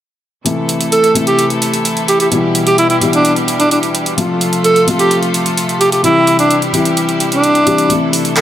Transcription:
0.44 C3 E3 A3 E4 A4, closed hi-hat
0.69 closed hi-hat
0.81 closed hi-hat
0.92 A4, closed hi-hat
1.04 closed hi-hat
1.14 C3 E3 A3 E4, closed hi-hat
1.27 G4, closed hi-hat
1.39 closed hi-hat
1.50 closed hi-hat
1.62 closed hi-hat
1.74 closed hi-hat
1.85 closed hi-hat
1.97 closed hi-hat
2.08 G4, closed hi-hat
2.20 G4, closed hi-hat
2.31 B2 E3 G3 E4 G4, closed hi-hat
2.55 closed hi-hat
2.67 G4, closed hi-hat
2.78 E4, closed hi-hat
2.90 E4, closed hi-hat
3.00 B2 E3 G3 E4, closed hi-hat
3.13 D4, closed hi-hat
3.25 closed hi-hat
3.36 closed hi-hat
3.48 closed hi-hat
3.60 D4, closed hi-hat
3.71 D4, closed hi-hat
3.83 closed hi-hat
3.95 closed hi-hat
4.06 closed hi-hat
4.17 C3 F3 A3 F4 A4, closed hi-hat
4.41 closed hi-hat
4.53 closed hi-hat
4.64 A4, closed hi-hat
4.76 closed hi-hat
4.86 C3 F3 A3 F4, closed hi-hat
4.99 G4, closed hi-hat
5.11 closed hi-hat
5.23 closed hi-hat
5.34 closed hi-hat
5.46 closed hi-hat
5.57 closed hi-hat
5.69 closed hi-hat
5.80 G4, closed hi-hat
5.92 G4, closed hi-hat
6.03 C3 E3 G3 E4 G4, closed hi-hat
6.27 closed hi-hat
6.39 D4, closed hi-hat
6.50 closed hi-hat
6.62 closed hi-hat
6.72 C3 E3 G3 E4, closed hi-hat
6.85 closed hi-hat
6.97 closed hi-hat
7.09 closed hi-hat
7.20 closed hi-hat
7.32 D4, closed hi-hat
7.44 closed hi-hat
7.55 closed hi-hat
7.66 C3 E3 G3 G4, closed hi-hat
7.78 closed hi-hat
7.89 C3 E3 A3 E4 A4, closed hi-hat
8.13 open hi-hat
8.25 closed hi-hat
8.36 A4, clap, closed hi-hat

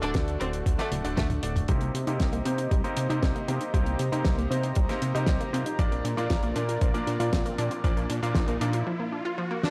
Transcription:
Already playing: D4 F#4 A4
0.02 D1 D3 A3 D4 F#4 D5, closed hi-hat
0.14 D2, kick, snare, closed hi-hat
0.28 closed hi-hat
0.40 D1 D3 A3 C4 D4 F#4 D5, closed hi-hat
0.53 closed hi-hat
0.66 D2, kick, closed hi-hat
0.78 D3 A3 D4 F#4 D5, snare, closed hi-hat
0.92 D1, closed hi-hat, high tom
1.04 D1 D3 A3 D4 F#4 D5, closed hi-hat
1.17 D2 A3, kick, snare, closed hi-hat, mid tom
1.30 closed hi-hat, mid tom
1.43 D1 A3 D4 F#4 D5, closed hi-hat
1.56 closed hi-hat, mid tom
1.68 C2 C3 G3 A#3 D#4 G4 C5 D#5 A#5, kick, closed hi-hat, riser
1.81 A#3, closed hi-hat
1.94 C3 C4, closed hi-hat
2.07 C3 A#3 D#4 G4 C5, closed hi-hat
2.20 C2 G3, kick, snare, closed hi-hat
2.32 A#3, closed hi-hat
2.45 C3 A#3 C4 D#4 G4 C5, closed hi-hat
2.58 D#4, closed hi-hat
2.71 C2 G3, kick, closed hi-hat
2.84 C3 A#3 D#4 G4 C5, closed hi-hat
2.97 C3 C4, closed hi-hat
3.10 C3 A#3 D#4 G4 C5, closed hi-hat
3.22 C2 G3, kick, snare, closed hi-hat
3.35 A#3, closed hi-hat
3.48 C3 A#3 C4 D#4 G4 C5, closed hi-hat
3.61 D#4, closed hi-hat
3.74 C2 C3 G3 A#3 D#4 G4 C5, kick, closed hi-hat
3.86 A#3, closed hi-hat
3.99 C3 C4, closed hi-hat
4.12 C3 A#3 D#4 G4 C5, closed hi-hat
4.25 C2 G3, kick, snare, closed hi-hat
4.38 A#3, closed hi-hat
4.51 C3 A#3 C4 D#4 G4 C5, closed hi-hat
4.63 D#4, closed hi-hat
4.75 C2 G3, kick, closed hi-hat
4.89 C3 A#3 D#4 G4 C5, snare, closed hi-hat
5.02 C3 C4, closed hi-hat
5.15 C3 A#3 D#4 G4 C5, closed hi-hat
5.26 C2 G3, kick, snare, closed hi-hat
5.40 A#3, closed hi-hat
5.53 A#2 C3 A#3 C4 D#4 G4 C5, closed hi-hat
5.66 D#4, closed hi-hat
5.79 A#1 A#2 F3 A#3 D4 F4 A#4 D5, kick, closed hi-hat
5.92 A#3, closed hi-hat
6.04 A#2 D4, closed hi-hat
6.17 A#2 A#3 D4 F4 D5, closed hi-hat
6.30 A#1 F3, kick, snare, closed hi-hat
6.43 A#3, closed hi-hat
6.56 A#2 A#3 D4 F4 D5, closed hi-hat
6.69 F4, closed hi-hat
6.81 A#1 F3, kick, closed hi-hat
6.94 A#2 A#3 D4 F4 D5, closed hi-hat
7.07 A#2 D4, closed hi-hat
7.20 A#2 A#3 D4 F4 D5, closed hi-hat
7.33 A#1 F3, kick, snare, closed hi-hat
7.45 A#3, closed hi-hat
7.58 A#2 A#3 D4 F4 D5, closed hi-hat
7.71 F4, closed hi-hat
7.84 A#1 A#2 F3 A#3 D4 F4 D5, kick, closed hi-hat
7.97 A#3, closed hi-hat
8.10 A#2 D4, closed hi-hat
8.23 A#2 A#3 D4 F4 D5, closed hi-hat
8.35 A#1 F3, kick, snare, closed hi-hat
8.48 A#3, closed hi-hat
8.61 A#2 A#3 D4 F4 D5, closed hi-hat
8.73 F4, closed hi-hat
8.87 F3
9.00 A#3
9.12 D4
9.25 F4
9.38 F3
9.51 A#3
9.63 D4, snare

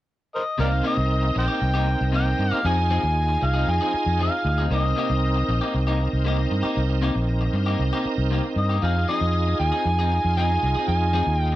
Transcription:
0.35 A#4 C5 D#5
0.58 C2 C3 A#3 C4 D#4 G4 A#4 D5 F5
0.71 muted clean electric guitar stroke
0.83 C3 A#3 D#4 G4 D#5
0.97 C2, muted clean electric guitar stroke
1.23 muted clean electric guitar stroke
1.35 A#1 C5 D#5 G5, muted clean electric guitar stroke
1.48 A#3 D#4 G4
1.61 C2, muted clean electric guitar stroke
1.74 C3 A#3 D#4 G4
1.87 muted clean electric guitar stroke
2.01 C2
2.12 C3 A#3 D#4 G4 G5
2.26 muted clean electric guitar stroke
2.39 G2, muted clean electric guitar stroke
2.51 A#3 D#4 G4 F5, muted fingered electric bass stroke
2.65 F2 F3 C4 D#4 F4 G#4 G#5
2.77 muted clean electric guitar stroke
2.90 F3 C4 D#4 G#4
3.03 D#2, muted clean electric guitar stroke
3.28 muted clean electric guitar stroke
3.42 C2 F5, muted clean electric guitar stroke
3.54 C4 D#4 G#4
3.67 F2 G#5, muted clean electric guitar stroke
3.81 F3 C4 D#4 G#4
3.94 muted fingered electric bass stroke, muted clean electric guitar stroke
4.06 F2
4.19 F3 C4 D#4 G#4 F5
4.33 muted clean electric guitar stroke
4.45 D2, muted clean electric guitar stroke
4.58 C4 D#4 G#4
4.70 C2 C3 A#3 C4 D#4 G4 A#4 D#5
4.84 muted clean electric guitar stroke
4.96 C3 A#3 D#4 G4
5.10 C2, muted clean electric guitar stroke
5.36 muted clean electric guitar stroke
5.49 A#1, muted clean electric guitar stroke
5.61 A#3 D#4 G4
5.74 C2, muted clean electric guitar stroke
5.87 C3 A#3 D#4 G4
6.00 muted clean electric guitar stroke
6.13 C2
6.25 C3 A#3 D#4 G4
6.39 muted clean electric guitar stroke
6.51 G2, muted clean electric guitar stroke
6.63 A#3 D#4 G4, muted fingered electric bass stroke
6.77 C2
6.90 muted clean electric guitar stroke
7.02 C3 A#3 D#4 G4
7.15 A#1, muted clean electric guitar stroke
7.41 muted clean electric guitar stroke
7.53 G2, muted clean electric guitar stroke
7.66 A#3 D#4 G4
7.79 C2, muted clean electric guitar stroke
7.93 C3 A#3 D#4 G4
8.05 muted fingered electric bass stroke, muted clean electric guitar stroke
8.18 C2
8.31 C3 A#3 D#4 G4
8.44 muted clean electric guitar stroke
8.56 G2 D#5, muted clean electric guitar stroke
8.69 A#3 D#4 G4
8.81 F2 F3 C4 D#4 F4 G#4 F5
8.96 muted clean electric guitar stroke
9.08 F3 C4 D#4 G#4 D#5
9.21 F2, muted clean electric guitar stroke
9.47 muted clean electric guitar stroke
9.60 D#2 G#5, muted clean electric guitar stroke
9.72 C4 D#4 G#4
9.85 F2, muted clean electric guitar stroke
9.99 F3 C4 D#4 G#4
10.12 muted clean electric guitar stroke
10.25 F2
10.37 F3 C4 D#4 G#4 G#5
10.50 muted clean electric guitar stroke
10.63 C2, muted clean electric guitar stroke
10.75 C4 D#4 G#4, muted fingered electric bass stroke
10.88 F2 G#5
11.01 muted clean electric guitar stroke
11.13 F3 C4 D#4 G#4
11.27 D#2, muted clean electric guitar stroke
11.39 G5
11.52 muted clean electric guitar stroke

